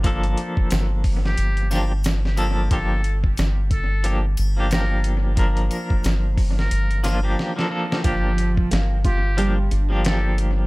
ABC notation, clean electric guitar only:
X:1
M:4/4
L:1/16
Q:"Swing 16ths" 1/4=90
K:Gm
V:1 name="Clean electric guitar"
[F,B,DA]8- [F,B,DA]2 [F,B,DG] z3 [F,B,DA]2 | [F,B,DG]2 z6 [F,B,DG] z2 [F,B,DG]4- [F,B,DG] | [F,B,DB]8- [F,B,DB]2 [F,B,DF] [F,B,DG]2 [F,B,DA] [F,B,DA]2 | [F,B,DG]2 z6 [F,B,DG] z2 [F,B,DG]4- [F,B,DG] |]